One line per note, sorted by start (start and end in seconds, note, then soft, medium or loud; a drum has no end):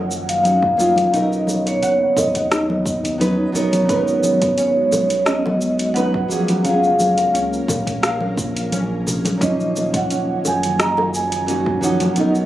0.00 1.06 F#1 loud
0.00 1.11 D#3 medium
0.00 0.43 F3 medium
0.00 0.39 F#3 medium
0.00 0.40 A#3 medium
0.00 1.11 A#3 medium
0.00 0.41 C#4 medium
0.00 1.11 C#4 medium
0.00 0.42 D#4 medium
0.00 0.25 F#5 loud
0.11 cabasa medium
0.29 0.78 F5 loud
0.29 closed hi-hat medium
0.29 cabasa soft
0.43 0.74 F#3 medium
0.43 0.75 A#3 medium
0.43 0.77 C#4 medium
0.43 0.75 C#4 medium
0.43 0.76 D#4 medium
0.43 0.76 F#4 medium
0.43 closed hi-hat soft
0.43 high conga medium
0.43 cabasa soft
0.62 kick loud
0.77 1.08 F#3 loud
0.77 1.09 A#3 medium
0.77 1.09 C#4 medium
0.77 1.10 D#4 medium
0.77 1.10 F4 loud
0.77 1.15 F5 medium
0.77 cabasa medium
0.96 closed hi-hat medium
0.96 high conga loud
0.96 cabasa soft
1.09 1.75 B1 loud
1.09 3.15 F#3 medium
1.09 3.15 B3 medium
1.09 3.16 C#4 medium
1.09 1.33 D#4 medium
1.14 6.27 B3 medium
1.14 3.87 D#4 medium
1.14 3.17 D#4 medium
1.14 3.18 A#4 medium
1.14 1.69 D#5 medium
1.14 closed hi-hat soft
1.14 cabasa soft
1.33 cabasa soft
1.47 high conga medium
1.47 cabasa medium
1.66 2.14 C#5 medium
1.66 closed hi-hat soft
1.66 high bongo soft
1.66 cabasa soft
1.82 2.07 F#1 loud
1.82 2.02 F#5 loud
1.82 closed hi-hat soft
1.82 cabasa soft
2.17 3.03 D#2 loud
2.17 3.17 D#5 medium
2.17 kick loud
2.17 high bongo medium
2.17 high conga medium
2.17 cabasa medium
2.35 kick medium
2.35 closed hi-hat medium
2.35 cabasa soft
2.52 2.84 D#4 medium
2.52 cross-stick medium
2.52 closed hi-hat soft
2.52 cabasa soft
2.70 high conga medium
2.86 kick loud
2.86 cabasa medium
3.03 3.47 D#2 loud
3.03 closed hi-hat medium
3.03 cabasa soft
3.18 3.50 F#3 medium
3.18 3.50 B3 medium
3.18 3.51 C#4 medium
3.18 3.40 D#4 medium
3.18 3.51 D#4 medium
3.18 3.52 B4 medium
3.18 closed hi-hat soft
3.18 high conga medium
3.18 cabasa soft
3.52 3.79 B1 loud
3.52 3.84 F#3 loud
3.52 3.85 B3 loud
3.52 3.85 C#4 medium
3.52 3.86 D#4 loud
3.52 3.86 A#4 loud
3.52 4.55 C#5 medium
3.52 cabasa medium
3.73 closed hi-hat medium
3.73 high conga medium
3.73 cabasa soft
3.85 4.85 G#1 loud
3.85 5.90 F#3 medium
3.85 5.91 B3 medium
3.85 5.92 C#4 medium
3.85 4.09 B4 loud
3.85 kick loud
3.85 closed hi-hat soft
3.89 6.29 G#3 medium
3.89 5.93 D#4 medium
3.89 6.28 F#4 medium
3.89 5.94 A#4 medium
3.89 cabasa medium
4.08 cabasa soft
4.23 high conga medium
4.23 cabasa medium
4.42 kick loud
4.42 closed hi-hat soft
4.42 cabasa soft
4.58 4.91 C#4 medium
4.58 5.23 C#5 medium
4.58 closed hi-hat soft
4.58 cabasa soft
4.92 6.23 B1 loud
4.92 high bongo medium
4.92 high conga medium
4.92 cabasa medium
5.10 closed hi-hat medium
5.10 cabasa soft
5.26 5.47 C#4 medium
5.26 5.98 D#5 loud
5.26 cross-stick medium
5.26 closed hi-hat soft
5.26 cabasa soft
5.46 high bongo soft
5.46 high conga loud
5.61 cabasa medium
5.79 closed hi-hat medium
5.79 cabasa soft
5.94 6.26 F#3 medium
5.94 6.26 B3 medium
5.94 6.27 C#4 medium
5.94 6.27 D#4 medium
5.94 6.16 B4 loud
5.94 6.28 B4 medium
5.94 6.66 F#5 loud
5.94 closed hi-hat soft
5.94 high conga medium
5.94 cabasa soft
6.14 kick loud
6.28 6.62 F3 medium
6.28 6.60 F#3 loud
6.28 6.61 A#3 medium
6.28 9.38 A#3 medium
6.28 6.61 C#4 medium
6.28 9.38 C#4 medium
6.28 6.62 G#4 loud
6.28 9.38 A#4 medium
6.28 cabasa medium
6.48 closed hi-hat medium
6.48 high conga loud
6.48 cabasa soft
6.62 7.26 F#1 loud
6.62 8.67 F#3 medium
6.62 8.68 A#3 medium
6.62 6.98 C#4 medium
6.62 8.69 C#4 medium
6.62 7.30 F5 loud
6.62 closed hi-hat soft
6.62 cabasa soft
6.68 8.70 F4 medium
6.68 8.70 G#4 medium
6.84 cabasa soft
7.00 high conga medium
7.00 cabasa medium
7.18 closed hi-hat medium
7.18 high bongo soft
7.18 cabasa soft
7.34 7.59 C#2 loud
7.34 7.54 C#4 medium
7.34 closed hi-hat soft
7.34 cabasa soft
7.53 cabasa soft
7.68 8.71 A#1 loud
7.68 kick loud
7.68 high bongo medium
7.68 high conga medium
7.68 cabasa medium
7.87 kick medium
7.87 closed hi-hat medium
7.87 cabasa soft
8.03 8.23 F5 loud
8.03 cross-stick medium
8.03 closed hi-hat soft
8.03 cabasa soft
8.21 high conga loud
8.37 kick loud
8.37 cabasa medium
8.56 closed hi-hat medium
8.56 cabasa soft
8.72 9.33 A#1 medium
8.72 9.04 C#4 loud
8.72 closed hi-hat soft
8.72 high conga medium
8.72 cabasa soft
9.07 low conga medium
9.07 cabasa medium
9.25 closed hi-hat medium
9.25 high conga loud
9.25 cabasa soft
9.37 10.37 D#1 loud
9.37 12.14 D#3 medium
9.37 11.42 F#3 medium
9.37 11.43 A#3 medium
9.37 12.14 A#3 medium
9.37 11.44 C#4 medium
9.37 kick loud
9.37 closed hi-hat soft
9.42 11.46 F3 medium
9.42 12.15 C#4 medium
9.42 9.74 C#4 medium
9.42 11.45 D#4 medium
9.42 9.96 D#5 medium
9.42 cabasa soft
9.60 cabasa soft
9.76 high conga medium
9.76 cabasa medium
9.94 10.47 F#5 medium
9.94 kick loud
9.94 closed hi-hat medium
9.94 cabasa soft
10.10 10.30 C#4 medium
10.10 closed hi-hat soft
10.10 cabasa soft
10.45 12.09 F#1 loud
10.45 10.78 G#5 loud
10.45 high bongo soft
10.45 high conga medium
10.45 cabasa medium
10.63 closed hi-hat soft
10.63 cabasa soft
10.79 10.99 D#5 loud
10.79 10.97 A#5 loud
10.79 cross-stick medium
10.79 closed hi-hat soft
10.79 cabasa soft
10.97 high bongo medium
10.97 high conga medium
11.14 11.80 G#5 loud
11.14 cabasa medium
11.32 closed hi-hat medium
11.32 cabasa soft
11.46 11.78 F#3 medium
11.46 11.78 A#3 medium
11.46 11.79 C#4 medium
11.46 11.81 C#4 medium
11.46 11.79 D#4 medium
11.46 11.80 F#4 medium
11.46 closed hi-hat soft
11.46 high conga medium
11.46 cabasa soft
11.66 kick loud
11.81 12.13 F3 loud
11.81 12.12 F#3 loud
11.81 12.13 A#3 medium
11.81 12.13 C#4 medium
11.81 12.14 D#4 medium
11.81 12.19 F#5 medium
11.81 cabasa medium
12.00 closed hi-hat medium
12.00 high conga loud
12.00 cabasa soft
12.14 12.46 B1 loud
12.14 12.46 F#3 medium
12.14 12.46 B3 medium
12.14 12.46 C#4 medium
12.14 closed hi-hat soft
12.14 cabasa soft
12.18 12.46 B3 medium
12.18 12.37 D#4 medium
12.18 12.46 D#4 medium
12.18 12.46 A#4 medium
12.18 12.46 D#5 medium
12.35 cabasa soft